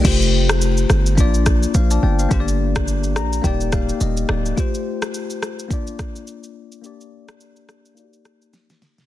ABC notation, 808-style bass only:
X:1
M:4/4
L:1/8
Q:"Swing 16ths" 1/4=106
K:Fmix
V:1 name="808-style bass" clef=bass
F,,,3 G,,, B,,,2 B,,, G,,, | G,,,3 B,,, E,,,2 E,,, D,,, | z8 | z8 |]